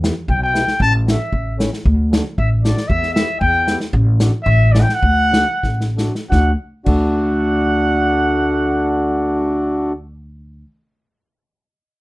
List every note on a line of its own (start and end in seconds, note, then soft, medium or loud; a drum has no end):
0.02 0.14 B3 medium
0.02 0.14 E4 medium
0.02 0.14 G4 medium
0.02 snare medium
0.02 hi-hat pedal soft
0.28 0.61 B1 loud
0.28 0.41 G5 medium
0.28 kick soft
0.43 0.78 G5 medium
0.53 0.65 B3 medium
0.53 0.65 E4 medium
0.53 0.65 G4 medium
0.53 snare medium
0.53 hi-hat pedal soft
0.68 snare medium
0.80 1.14 A1 loud
0.80 0.94 A5 loud
0.80 kick medium
1.05 1.17 A3 medium
1.05 1.18 D4 medium
1.05 1.18 F#4 medium
1.05 snare medium
1.05 hi-hat pedal soft
1.10 1.57 E5 medium
1.32 1.67 A1 medium
1.32 kick soft
1.58 1.70 A3 medium
1.58 1.70 C#4 medium
1.58 1.71 E4 medium
1.58 snare medium
1.58 hi-hat pedal soft
1.73 snare soft
1.85 2.20 D2 loud
1.85 kick medium
2.11 2.23 A3 medium
2.11 2.24 D4 medium
2.11 2.24 F#4 medium
2.11 snare medium
2.11 hi-hat pedal soft
2.38 2.72 A1 medium
2.38 2.50 E5 medium
2.38 kick soft
2.63 2.75 A3 medium
2.63 2.76 D4 medium
2.63 2.76 F#4 medium
2.63 2.89 D5 medium
2.63 snare medium
2.63 hi-hat pedal soft
2.77 snare soft
2.88 3.23 E2 loud
2.88 3.13 E5 medium
2.88 kick medium
3.03 snare soft
3.14 3.28 B3 medium
3.14 3.28 E4 medium
3.14 3.38 E5 medium
3.14 snare medium
3.14 hi-hat pedal soft
3.18 3.28 G4 medium
3.40 3.75 E2 loud
3.40 3.77 G5 loud
3.40 kick medium
3.67 3.79 B3 medium
3.67 3.80 E4 medium
3.67 3.80 G4 medium
3.67 snare medium
3.67 hi-hat pedal soft
3.80 snare soft
3.93 4.28 A1 loud
3.93 kick medium
4.19 4.31 A3 medium
4.19 4.32 D4 medium
4.19 4.32 F#4 medium
4.19 snare medium
4.19 hi-hat pedal soft
4.43 4.82 A1 loud
4.43 4.73 E5 loud
4.43 kick soft
4.72 4.86 A3 medium
4.72 4.87 C#4 medium
4.72 4.87 E4 medium
4.72 4.83 D5 medium
4.72 snare medium
4.72 hi-hat pedal soft
4.81 4.96 G5 medium
4.89 snare soft
4.94 5.94 F#5 loud
5.02 5.42 D2 loud
5.02 kick medium
5.30 5.45 A3 medium
5.30 5.45 D4 medium
5.30 5.46 F#4 medium
5.30 snare medium
5.30 hi-hat pedal soft
5.63 6.08 A1 medium
5.63 kick medium
5.63 snare soft
5.81 snare soft
5.96 6.12 A3 medium
5.96 6.13 D4 medium
5.96 6.13 F#4 medium
5.96 snare medium
5.96 hi-hat pedal soft
6.15 snare medium
6.29 6.53 D2 medium
6.29 6.52 A3 medium
6.29 6.52 D4 medium
6.29 6.52 F#4 medium
6.29 6.52 F#5 medium
6.29 kick medium
6.29 snare medium
6.85 10.63 D2 medium
6.85 9.93 A3 medium
6.85 9.92 D4 medium
6.85 9.92 F#4 loud
6.85 9.93 F#5 medium
6.85 kick medium
6.85 crash medium